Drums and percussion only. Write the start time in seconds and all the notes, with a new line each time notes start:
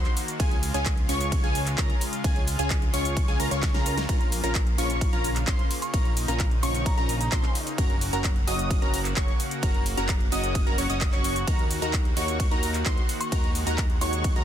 0.05 clap, closed hi-hat
0.17 open hi-hat, shaker
0.28 closed hi-hat, shaker
0.40 kick, closed hi-hat, ride, shaker
0.51 closed hi-hat
0.63 open hi-hat, shaker
0.74 closed hi-hat, shaker
0.86 kick, clap, closed hi-hat, ride, shaker
0.97 closed hi-hat
1.09 open hi-hat, shaker
1.21 closed hi-hat, shaker
1.32 kick, closed hi-hat, ride, shaker
1.44 closed hi-hat
1.55 open hi-hat, shaker
1.66 clap, closed hi-hat, shaker
1.78 kick, clap, closed hi-hat, ride, shaker
1.90 closed hi-hat
2.01 open hi-hat, shaker
2.13 closed hi-hat, shaker
2.24 kick, closed hi-hat, ride, shaker
2.36 closed hi-hat
2.47 open hi-hat, shaker
2.59 closed hi-hat, shaker
2.70 kick, clap, closed hi-hat, ride, shaker
2.82 closed hi-hat
2.94 open hi-hat, shaker
3.05 closed hi-hat, shaker
3.17 kick, closed hi-hat, ride, shaker
3.28 closed hi-hat
3.40 open hi-hat, shaker
3.51 closed hi-hat, shaker
3.63 kick, snare, clap, closed hi-hat, ride, shaker
3.74 snare, closed hi-hat
3.86 open hi-hat, shaker
3.98 snare, closed hi-hat, shaker
4.09 kick, closed hi-hat, ride, shaker
4.21 closed hi-hat
4.32 open hi-hat, shaker
4.44 closed hi-hat, shaker
4.55 kick, clap, closed hi-hat, ride, shaker
4.67 closed hi-hat
4.78 open hi-hat, shaker
4.90 closed hi-hat, shaker
5.01 kick, closed hi-hat, ride, shaker
5.13 closed hi-hat
5.24 open hi-hat, shaker
5.36 clap, closed hi-hat, shaker
5.47 kick, clap, closed hi-hat, ride, shaker
5.59 closed hi-hat
5.71 open hi-hat, shaker
5.82 closed hi-hat, shaker
5.94 kick, closed hi-hat, ride, shaker
6.05 closed hi-hat
6.17 open hi-hat, shaker
6.28 closed hi-hat, shaker
6.40 kick, clap, closed hi-hat, ride, shaker
6.51 closed hi-hat
6.63 open hi-hat, shaker
6.75 closed hi-hat, shaker
6.86 kick, closed hi-hat, ride, shaker
6.98 closed hi-hat
7.09 open hi-hat, shaker
7.21 closed hi-hat, shaker
7.32 kick, clap, closed hi-hat, ride, shaker
7.43 clap, closed hi-hat
7.55 open hi-hat, shaker
7.67 closed hi-hat, shaker
7.78 kick, closed hi-hat, ride, shaker
7.90 closed hi-hat
8.01 open hi-hat, shaker
8.13 closed hi-hat, shaker
8.24 kick, clap, closed hi-hat, ride, shaker
8.36 closed hi-hat
8.48 open hi-hat, shaker
8.59 closed hi-hat, shaker
8.71 kick, closed hi-hat, ride, shaker
8.82 closed hi-hat
8.94 open hi-hat, shaker
9.05 clap, closed hi-hat, shaker
9.16 kick, clap, closed hi-hat, ride, shaker
9.28 closed hi-hat
9.40 open hi-hat, shaker
9.51 closed hi-hat, shaker
9.63 kick, closed hi-hat, ride, shaker
9.74 closed hi-hat
9.86 open hi-hat, shaker
9.97 closed hi-hat, shaker
10.09 kick, clap, closed hi-hat, ride, shaker
10.21 closed hi-hat
10.32 open hi-hat, shaker
10.44 closed hi-hat, shaker
10.55 kick, closed hi-hat, ride, shaker
10.67 closed hi-hat
10.78 open hi-hat, shaker
10.90 closed hi-hat, shaker
11.01 kick, clap, closed hi-hat, ride, shaker
11.13 clap, closed hi-hat
11.24 open hi-hat, shaker
11.36 closed hi-hat, shaker
11.47 kick, closed hi-hat, ride, shaker
11.59 closed hi-hat
11.71 open hi-hat, shaker
11.82 closed hi-hat, shaker
11.93 kick, clap, closed hi-hat, ride, shaker
12.05 closed hi-hat
12.17 open hi-hat, shaker
12.28 closed hi-hat, shaker
12.40 kick, closed hi-hat, ride, shaker
12.51 closed hi-hat
12.63 open hi-hat, shaker
12.74 clap, closed hi-hat, shaker
12.86 kick, clap, closed hi-hat, ride, shaker
12.98 closed hi-hat
13.09 open hi-hat, shaker
13.21 closed hi-hat, shaker
13.32 kick, closed hi-hat, ride, shaker
13.44 closed hi-hat
13.55 open hi-hat, shaker
13.67 closed hi-hat, shaker
13.78 kick, clap, closed hi-hat, ride, shaker
13.90 closed hi-hat
14.01 open hi-hat, shaker
14.13 closed hi-hat, shaker
14.24 kick, closed hi-hat, ride, shaker
14.36 closed hi-hat